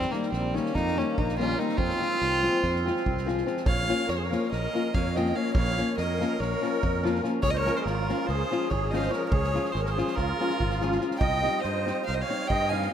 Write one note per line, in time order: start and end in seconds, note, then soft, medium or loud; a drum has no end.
0.00 0.11 G3 medium
0.00 0.13 C4 loud
0.00 snare soft
0.11 0.28 D#3 medium
0.11 0.28 G3 medium
0.11 0.32 G3 medium
0.11 0.30 A#3 medium
0.11 0.29 A#3 medium
0.11 0.29 D#4 medium
0.11 snare soft
0.23 snare soft
0.30 0.58 A#1 medium
0.30 0.54 G3 medium
0.30 0.56 C4 medium
0.30 snare soft
0.53 0.70 D#3 medium
0.53 0.70 G3 medium
0.53 0.71 A#3 medium
0.53 0.74 A#3 medium
0.53 0.76 C#4 medium
0.53 0.71 D#4 medium
0.53 snare soft
0.66 snare soft
0.75 1.01 F2 medium
0.75 0.96 A#3 medium
0.75 0.99 D#4 loud
0.75 kick medium
0.75 snare soft
0.87 snare soft
0.96 1.13 D#3 medium
0.96 1.13 G3 medium
0.96 1.14 A#3 soft
0.96 1.17 A#3 medium
0.96 1.20 C#4 medium
0.96 1.14 D#4 medium
0.96 snare soft
1.18 1.55 A#1 medium
1.18 1.40 A#3 medium
1.18 1.39 D#4 medium
1.18 kick medium
1.29 snare soft
1.38 1.54 D#3 medium
1.38 1.54 G3 medium
1.38 1.55 A#3 medium
1.38 1.58 C#4 medium
1.38 1.55 D#4 medium
1.38 1.60 F4 medium
1.38 snare soft
1.50 snare soft
1.57 1.73 D#3 medium
1.57 1.74 G3 medium
1.57 1.74 A#3 medium
1.57 1.75 C4 medium
1.57 1.79 D#4 loud
1.57 1.74 D#4 medium
1.57 snare soft
1.69 snare soft
1.77 1.92 F2 medium
1.77 3.27 C4 medium
1.77 3.28 F4 loud
1.77 kick medium
1.90 snare soft
1.99 2.16 F3 medium
1.99 2.16 G#3 medium
1.99 2.17 C4 medium
1.99 2.17 F4 medium
1.99 snare soft
2.21 2.47 C2 medium
2.21 snare soft
2.33 snare soft
2.42 2.59 F3 medium
2.42 2.59 G#3 medium
2.42 2.60 C4 medium
2.42 2.60 F4 medium
2.42 snare soft
2.54 snare soft
2.63 2.89 F2 loud
2.63 kick soft
2.63 snare soft
2.76 snare soft
2.85 3.02 F3 medium
2.85 3.02 G#3 medium
2.85 3.03 C4 medium
2.85 3.03 F4 medium
2.85 snare soft
2.96 snare soft
3.06 3.42 C2 medium
3.06 kick medium
3.18 snare soft
3.26 3.43 F3 medium
3.26 3.43 G#3 medium
3.26 3.43 C4 medium
3.26 3.43 F4 medium
3.26 snare soft
3.38 snare soft
3.46 3.62 F3 medium
3.46 3.62 G#3 medium
3.46 3.63 C4 medium
3.46 3.63 F4 medium
3.46 snare soft
3.57 snare soft
3.66 3.92 A#1 medium
3.66 4.06 C#5 medium
3.66 4.11 F5 loud
3.66 kick loud
3.88 4.05 F3 medium
3.88 4.05 A#3 soft
3.88 4.05 C#4 medium
3.88 4.06 F4 medium
3.88 snare soft
4.07 4.35 F2 medium
4.07 4.16 A#4 medium
4.07 4.19 C#5 medium
4.07 snare soft
4.16 4.24 G#4 medium
4.16 4.25 C5 medium
4.23 4.48 A#4 medium
4.23 4.51 C#5 medium
4.30 4.47 F3 medium
4.30 4.48 A#3 medium
4.30 4.48 C#4 medium
4.30 4.48 F4 medium
4.30 snare soft
4.50 4.66 A#1 medium
4.50 4.91 A#4 medium
4.50 4.96 D#5 loud
4.50 snare soft
4.73 4.90 F3 medium
4.73 4.90 A#3 medium
4.73 4.91 C#4 medium
4.73 4.91 F4 medium
4.73 snare soft
4.93 5.31 F2 medium
4.93 5.16 C#5 medium
4.93 5.17 F5 medium
4.93 kick medium
5.14 5.32 F3 medium
5.14 5.32 A#3 medium
5.14 5.32 C#4 medium
5.14 5.32 F4 medium
5.14 5.35 D#5 medium
5.14 5.37 G5 medium
5.14 snare soft
5.25 snare soft
5.34 5.51 F3 medium
5.34 5.51 A#3 medium
5.34 5.51 C#4 medium
5.34 5.52 F4 medium
5.34 5.52 C#5 medium
5.34 5.54 F5 medium
5.53 5.81 A#1 loud
5.53 5.94 C#5 medium
5.53 5.94 F5 loud
5.53 kick loud
5.77 5.93 F3 medium
5.77 5.93 A#3 medium
5.77 5.94 C#4 medium
5.77 5.94 F4 medium
5.77 snare soft
5.97 6.23 F2 medium
5.97 6.37 A#4 medium
5.97 6.42 D#5 medium
5.97 snare soft
6.19 6.36 F3 medium
6.19 6.36 A#3 medium
6.19 6.37 C#4 medium
6.19 6.37 F4 medium
6.19 snare soft
6.38 6.54 A#1 medium
6.38 7.23 A#4 medium
6.38 7.24 C#5 medium
6.38 snare soft
6.61 6.78 F3 medium
6.61 6.78 A#3 medium
6.61 6.79 C#4 medium
6.61 6.79 F4 medium
6.61 snare soft
6.83 7.20 F2 loud
6.83 kick medium
7.03 7.19 F3 medium
7.03 7.20 A#3 medium
7.03 7.20 C#4 medium
7.03 7.20 F4 medium
7.03 snare soft
7.15 snare soft
7.22 7.39 F3 medium
7.22 7.39 A#3 medium
7.22 7.39 C#4 medium
7.22 7.40 F4 medium
7.22 snare soft
7.42 7.69 C#2 medium
7.42 7.49 G#4 medium
7.42 7.52 C#5 loud
7.42 kick medium
7.50 7.59 C5 medium
7.50 7.58 D#5 medium
7.56 7.86 A#4 loud
7.56 7.78 C#5 loud
7.65 7.81 F3 medium
7.65 7.82 G#3 medium
7.65 7.82 C#4 medium
7.65 7.82 F4 medium
7.65 snare soft
7.77 7.86 G#4 medium
7.77 7.86 C5 medium
7.84 8.11 G#1 loud
7.84 8.28 F4 medium
7.84 8.28 A#4 medium
7.84 snare soft
8.09 8.25 F3 medium
8.09 8.25 G#3 medium
8.09 8.25 C#4 medium
8.09 8.26 F4 medium
8.09 snare soft
8.27 8.42 C#2 loud
8.27 8.70 G#4 medium
8.27 8.71 C5 loud
8.27 snare soft
8.51 8.67 F3 medium
8.51 8.67 G#3 medium
8.51 8.68 C#4 soft
8.51 8.68 F4 medium
8.51 snare soft
8.70 9.08 G#1 loud
8.70 8.93 G#4 medium
8.70 8.92 C#5 medium
8.70 kick medium
8.91 9.08 F3 medium
8.91 9.08 G#3 medium
8.91 9.09 C#4 medium
8.91 9.09 F4 medium
8.91 8.98 C5 medium
8.91 8.98 D#5 medium
8.91 snare soft
8.97 9.03 C#5 medium
8.97 9.12 D#5 medium
8.97 9.01 F5 medium
9.01 9.12 C5 medium
9.01 snare soft
9.10 9.27 F3 medium
9.10 9.27 G#3 medium
9.10 9.28 C#4 medium
9.10 9.28 F4 medium
9.10 9.32 A#4 medium
9.10 9.29 C#5 medium
9.10 snare soft
9.29 9.58 C#2 loud
9.29 9.72 G#4 medium
9.29 9.73 C#5 loud
9.29 kick loud
9.44 snare soft
9.54 9.70 F3 medium
9.54 9.71 G#3 medium
9.54 9.71 C#4 soft
9.54 9.71 F4 medium
9.54 snare soft
9.65 snare soft
9.72 10.01 G#1 loud
9.72 9.82 G#4 medium
9.72 9.82 C5 medium
9.72 snare soft
9.80 9.90 A#4 medium
9.80 9.89 C#5 medium
9.86 10.17 G#4 medium
9.86 10.17 C5 medium
9.86 snare soft
9.96 10.13 F3 medium
9.96 10.13 G#3 medium
9.96 10.14 C#4 medium
9.96 10.14 F4 medium
9.96 snare soft
10.07 snare soft
10.15 10.31 C#2 medium
10.15 11.00 F4 medium
10.15 11.01 A#4 loud
10.15 kick medium
10.15 snare soft
10.40 10.56 F3 medium
10.40 10.56 G#3 medium
10.40 10.57 C#4 medium
10.40 10.57 F4 medium
10.40 snare soft
10.50 snare soft
10.60 10.97 G#1 medium
10.60 kick medium
10.71 snare soft
10.81 10.97 F3 medium
10.81 10.98 G#3 medium
10.81 10.98 C#4 medium
10.81 10.98 F4 medium
10.81 snare soft
10.92 snare soft
11.00 11.16 F3 medium
11.00 11.17 G#3 medium
11.00 11.17 C#4 medium
11.00 11.17 F4 medium
11.00 snare soft
11.11 snare soft
11.18 11.47 C2 medium
11.18 11.61 D#5 medium
11.18 11.63 G5 loud
11.18 kick loud
11.42 11.59 G3 medium
11.42 11.59 C4 medium
11.42 11.60 D#4 soft
11.42 11.60 G4 medium
11.42 snare soft
11.62 11.90 G2 medium
11.62 12.03 C5 medium
11.62 12.05 D#5 medium
11.62 snare soft
11.85 12.02 G3 medium
11.85 12.03 C4 medium
11.85 12.03 D#4 medium
11.85 12.03 G4 medium
11.85 snare soft
12.05 12.22 C2 medium
12.05 12.11 C5 medium
12.05 12.15 F5 loud
12.05 snare soft
12.12 12.21 C5 medium
12.12 12.22 D#5 medium
12.21 12.49 C#5 medium
12.21 12.48 F5 medium
12.29 12.46 G3 medium
12.29 12.46 C4 soft
12.29 12.46 D#4 soft
12.29 12.46 G4 medium
12.29 snare soft
12.47 12.87 G2 medium
12.47 12.71 D#5 loud
12.47 12.70 G5 loud
12.47 kick medium
12.69 12.87 G3 medium
12.69 12.87 C4 medium
12.69 12.88 D#4 medium
12.69 12.90 F5 medium
12.69 12.90 G#5 medium
12.69 snare soft
12.73 12.88 G4 medium
12.82 snare soft